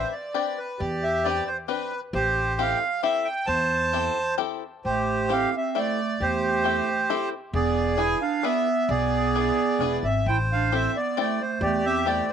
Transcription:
0.00 0.12 C4 medium
0.00 0.12 D4 medium
0.00 0.12 G4 medium
0.00 0.13 B4 medium
0.00 0.14 E5 medium
0.12 0.34 D5 medium
0.34 0.58 C4 medium
0.34 0.58 D4 medium
0.34 0.58 G4 medium
0.34 0.58 B4 medium
0.34 0.59 D5 medium
0.58 0.81 B4 medium
0.79 1.39 E2 loud
0.79 1.44 G4 medium
0.79 1.04 D5 medium
1.03 1.26 E5 loud
1.24 1.49 C4 medium
1.24 1.48 D4 medium
1.24 1.49 G4 medium
1.24 1.49 B4 medium
1.24 1.49 D5 loud
1.47 1.57 C5 medium
1.68 1.92 C4 medium
1.68 1.93 D4 medium
1.68 1.92 G4 medium
1.68 2.01 B4 medium
1.68 1.93 B4 medium
2.13 2.72 A1 loud
2.13 2.79 G4 medium
2.13 2.61 C5 loud
2.59 2.82 C4 medium
2.59 2.82 E4 medium
2.59 2.82 G4 medium
2.59 2.82 A4 medium
2.59 3.02 F5 loud
3.03 3.27 C4 medium
3.03 3.27 E4 medium
3.03 3.27 G4 medium
3.03 3.27 A4 medium
3.03 3.27 E5 loud
3.25 3.46 G5 medium
3.46 4.07 E2 loud
3.46 4.35 C5 medium
3.46 4.34 A5 loud
3.93 4.17 C4 medium
3.93 4.17 E4 medium
3.93 4.17 G4 medium
3.93 4.18 A4 medium
4.38 4.62 C4 medium
4.38 4.63 E4 medium
4.38 4.62 G4 medium
4.38 4.63 A4 medium
4.85 5.44 A1 medium
4.85 5.29 A3 medium
4.85 5.50 G4 medium
4.85 5.32 C5 medium
5.29 5.53 C4 medium
5.29 5.54 E4 medium
5.29 5.54 G4 medium
5.29 5.54 A4 medium
5.29 5.55 F5 loud
5.56 5.76 C4 medium
5.56 5.78 E5 medium
5.75 6.18 A3 medium
5.75 5.99 C4 medium
5.75 5.99 E4 medium
5.75 5.99 G4 medium
5.75 5.99 A4 medium
5.75 6.23 D5 loud
6.20 6.78 E2 medium
6.20 7.29 G4 medium
6.20 7.29 C5 medium
6.25 7.30 A3 medium
6.64 6.88 C4 medium
6.64 6.88 E4 medium
6.64 6.88 G4 medium
6.64 6.88 A4 medium
7.10 7.33 C4 medium
7.10 7.33 E4 medium
7.10 7.33 G4 medium
7.10 7.33 A4 medium
7.53 8.12 E1 loud
7.53 7.95 B3 medium
7.53 8.18 G#4 medium
7.53 8.00 D5 medium
7.97 8.21 D4 medium
7.97 8.21 E4 medium
7.97 8.20 E4 medium
7.97 8.21 G#4 medium
7.97 8.22 B4 medium
7.97 8.22 G#5 loud
8.22 8.42 D4 medium
8.22 8.44 F5 medium
8.43 8.87 B3 loud
8.43 8.67 D4 medium
8.43 8.67 E4 medium
8.43 8.67 G#4 medium
8.43 8.67 B4 medium
8.43 8.90 E5 loud
8.89 9.48 B1 loud
8.89 10.00 B3 loud
8.89 10.00 G#4 medium
8.89 10.07 D5 loud
9.36 9.58 D4 medium
9.36 9.58 E4 medium
9.36 9.59 G#4 medium
9.36 9.59 B4 medium
9.79 10.01 E1 medium
9.79 10.04 D4 medium
9.79 10.04 E4 medium
9.79 10.04 G#4 medium
9.79 10.04 B4 medium
10.03 10.23 G#1 medium
10.03 10.25 C4 medium
10.03 10.27 E5 medium
10.26 10.85 A1 medium
10.26 10.39 E4 medium
10.26 10.92 C5 medium
10.26 10.37 G5 medium
10.51 10.71 D4 medium
10.51 10.74 F5 medium
10.72 10.95 C4 medium
10.72 10.94 C4 medium
10.72 10.95 E4 soft
10.72 10.95 G4 medium
10.72 10.95 A4 medium
10.72 10.97 E5 medium
10.96 11.17 B3 medium
10.96 11.18 D5 medium
11.17 11.40 A3 medium
11.17 11.40 C4 medium
11.17 11.41 E4 medium
11.17 11.41 G4 medium
11.17 11.41 A4 medium
11.17 11.42 D5 medium
11.41 11.61 A3 medium
11.41 11.63 C5 medium
11.61 12.19 E2 loud
11.61 11.85 A3 loud
11.61 12.25 G4 medium
11.61 11.85 D5 medium
11.86 12.05 C4 medium
11.86 12.08 E5 loud
12.06 12.28 A3 medium
12.06 12.29 C4 medium
12.06 12.29 E4 medium
12.06 12.30 G4 medium
12.06 12.29 A4 medium
12.06 12.30 D5 medium
12.29 12.33 C5 medium

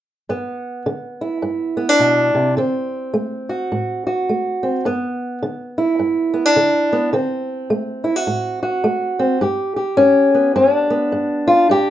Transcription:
0.29 0.82 G2 medium
0.29 1.76 B3 soft
0.86 1.39 D3 soft
1.21 2.57 E4 soft
1.42 1.95 G2 medium
1.77 1.89 B3 soft
1.89 2.57 D4 soft
2.00 2.34 B2 soft
2.35 2.57 C3 soft
2.57 3.10 D3 medium
2.57 4.62 C4 soft
3.14 3.67 A3 soft
3.49 4.05 F#4 soft
3.72 4.24 A2 soft
4.07 4.83 F#4 medium
4.29 4.81 A3 soft
4.63 4.83 C4 soft
4.85 5.38 G2 medium
4.85 6.32 B3 medium
5.43 5.95 D3 medium
5.78 7.14 E4 soft
5.99 6.52 G2 soft
6.34 6.46 B3 soft
6.46 7.13 D4 soft
6.56 7.09 D3 medium
6.93 7.11 B3 medium
7.13 7.66 D3 medium
7.13 9.18 C4 medium
7.70 8.23 A3 medium
8.04 8.16 E4 soft
8.16 8.62 F#4 soft
8.27 8.80 A2 medium
8.63 9.39 F#4 medium
8.84 9.36 A3 medium
9.19 9.39 C4 medium
9.41 9.93 G2 medium
9.41 9.76 G4 soft
9.76 11.47 G4 soft
9.97 10.50 G2 medium
9.97 10.54 C#4 medium
10.35 10.89 B3 soft
10.56 11.08 G2 medium
10.56 10.74 C#4 medium
10.74 11.90 D4 medium
10.90 11.66 B3 soft
11.12 11.64 G2 medium
11.48 11.69 F4 medium
11.69 11.90 G2 medium
11.69 11.90 G4 medium

